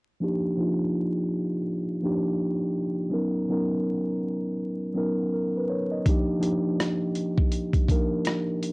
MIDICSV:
0, 0, Header, 1, 3, 480
1, 0, Start_track
1, 0, Key_signature, -3, "major"
1, 0, Tempo, 731707
1, 131, Time_signature, 4, 2, 24, 8
1, 5724, End_track
2, 0, Start_track
2, 0, Title_t, "Tine electric piano"
2, 0, Program_c, 0, 4
2, 131, Note_on_c, 0, 53, 74
2, 139, Note_on_c, 0, 58, 70
2, 142, Note_on_c, 0, 62, 68
2, 147, Note_on_c, 0, 63, 65
2, 154, Note_on_c, 0, 67, 82
2, 266, Control_c, 0, 64, 127
2, 291, Note_off_c, 0, 53, 0
2, 295, Note_off_c, 0, 58, 0
2, 296, Note_off_c, 0, 62, 0
2, 299, Note_off_c, 0, 63, 0
2, 303, Note_off_c, 0, 67, 0
2, 372, Note_on_c, 0, 53, 67
2, 377, Note_on_c, 0, 58, 60
2, 382, Note_on_c, 0, 62, 57
2, 386, Note_on_c, 0, 63, 57
2, 392, Note_on_c, 0, 65, 72
2, 1030, Note_off_c, 0, 53, 0
2, 1033, Note_off_c, 0, 58, 0
2, 1035, Note_off_c, 0, 62, 0
2, 1037, Note_off_c, 0, 63, 0
2, 1040, Note_off_c, 0, 65, 0
2, 1327, Note_on_c, 0, 53, 61
2, 1331, Note_on_c, 0, 58, 65
2, 1338, Note_on_c, 0, 62, 65
2, 1345, Note_on_c, 0, 63, 62
2, 1348, Note_on_c, 0, 67, 84
2, 1809, Note_off_c, 0, 53, 0
2, 1811, Note_off_c, 0, 58, 0
2, 1815, Note_off_c, 0, 62, 0
2, 1818, Note_off_c, 0, 63, 0
2, 1820, Note_off_c, 0, 67, 0
2, 2035, Note_on_c, 0, 54, 68
2, 2043, Note_on_c, 0, 59, 66
2, 2046, Note_on_c, 0, 61, 59
2, 2054, Note_on_c, 0, 63, 59
2, 2059, Note_on_c, 0, 70, 77
2, 2060, Control_c, 0, 64, 0
2, 2180, Control_c, 0, 64, 127
2, 2203, Note_off_c, 0, 54, 0
2, 2207, Note_off_c, 0, 59, 0
2, 2209, Note_off_c, 0, 61, 0
2, 2212, Note_off_c, 0, 63, 0
2, 2215, Note_off_c, 0, 70, 0
2, 2290, Note_on_c, 0, 54, 65
2, 2296, Note_on_c, 0, 59, 62
2, 2301, Note_on_c, 0, 61, 62
2, 2306, Note_on_c, 0, 63, 67
2, 2312, Note_on_c, 0, 70, 75
2, 2949, Note_off_c, 0, 54, 0
2, 2952, Note_off_c, 0, 59, 0
2, 2955, Note_off_c, 0, 61, 0
2, 2957, Note_off_c, 0, 63, 0
2, 2960, Note_off_c, 0, 70, 0
2, 3244, Note_on_c, 0, 54, 66
2, 3250, Note_on_c, 0, 59, 63
2, 3254, Note_on_c, 0, 61, 62
2, 3262, Note_on_c, 0, 63, 65
2, 3266, Note_on_c, 0, 70, 77
2, 3494, Note_off_c, 0, 70, 0
2, 3502, Note_on_c, 0, 70, 58
2, 3637, Note_off_c, 0, 70, 0
2, 3658, Note_on_c, 0, 71, 64
2, 3728, Note_off_c, 0, 54, 0
2, 3731, Note_off_c, 0, 59, 0
2, 3733, Note_off_c, 0, 61, 0
2, 3736, Note_off_c, 0, 71, 0
2, 3737, Note_off_c, 0, 63, 0
2, 3737, Note_on_c, 0, 73, 67
2, 3874, Note_off_c, 0, 73, 0
2, 3880, Note_on_c, 0, 75, 58
2, 3974, Note_on_c, 0, 53, 78
2, 3978, Note_on_c, 0, 58, 66
2, 3979, Control_c, 0, 64, 0
2, 3984, Note_on_c, 0, 62, 72
2, 3991, Note_on_c, 0, 63, 69
2, 3995, Note_on_c, 0, 67, 86
2, 4103, Control_c, 0, 64, 127
2, 4107, Note_off_c, 0, 75, 0
2, 4133, Note_off_c, 0, 53, 0
2, 4135, Note_off_c, 0, 58, 0
2, 4138, Note_off_c, 0, 62, 0
2, 4141, Note_off_c, 0, 63, 0
2, 4143, Note_off_c, 0, 67, 0
2, 4192, Note_on_c, 0, 53, 76
2, 4199, Note_on_c, 0, 58, 68
2, 4203, Note_on_c, 0, 62, 55
2, 4209, Note_on_c, 0, 63, 62
2, 4214, Note_on_c, 0, 67, 66
2, 4860, Note_off_c, 0, 53, 0
2, 4864, Note_off_c, 0, 58, 0
2, 4866, Note_off_c, 0, 62, 0
2, 4869, Note_off_c, 0, 63, 0
2, 4871, Note_off_c, 0, 67, 0
2, 5168, Note_on_c, 0, 53, 72
2, 5174, Note_on_c, 0, 58, 70
2, 5178, Note_on_c, 0, 62, 66
2, 5186, Note_on_c, 0, 63, 63
2, 5191, Note_on_c, 0, 70, 82
2, 5650, Note_off_c, 0, 53, 0
2, 5653, Note_off_c, 0, 58, 0
2, 5655, Note_off_c, 0, 62, 0
2, 5658, Note_off_c, 0, 63, 0
2, 5661, Note_off_c, 0, 70, 0
2, 5724, End_track
3, 0, Start_track
3, 0, Title_t, "Drums"
3, 3974, Note_on_c, 9, 36, 101
3, 3974, Note_on_c, 9, 42, 71
3, 4039, Note_off_c, 9, 36, 0
3, 4040, Note_off_c, 9, 42, 0
3, 4215, Note_on_c, 9, 42, 61
3, 4281, Note_off_c, 9, 42, 0
3, 4461, Note_on_c, 9, 37, 90
3, 4461, Note_on_c, 9, 42, 79
3, 4526, Note_off_c, 9, 37, 0
3, 4527, Note_off_c, 9, 42, 0
3, 4692, Note_on_c, 9, 42, 59
3, 4757, Note_off_c, 9, 42, 0
3, 4838, Note_on_c, 9, 36, 93
3, 4904, Note_off_c, 9, 36, 0
3, 4931, Note_on_c, 9, 42, 69
3, 4996, Note_off_c, 9, 42, 0
3, 5072, Note_on_c, 9, 36, 89
3, 5078, Note_on_c, 9, 42, 46
3, 5138, Note_off_c, 9, 36, 0
3, 5143, Note_off_c, 9, 42, 0
3, 5172, Note_on_c, 9, 36, 90
3, 5178, Note_on_c, 9, 42, 64
3, 5237, Note_off_c, 9, 36, 0
3, 5244, Note_off_c, 9, 42, 0
3, 5411, Note_on_c, 9, 42, 72
3, 5425, Note_on_c, 9, 37, 92
3, 5476, Note_off_c, 9, 42, 0
3, 5491, Note_off_c, 9, 37, 0
3, 5659, Note_on_c, 9, 42, 64
3, 5724, Note_off_c, 9, 42, 0
3, 5724, End_track
0, 0, End_of_file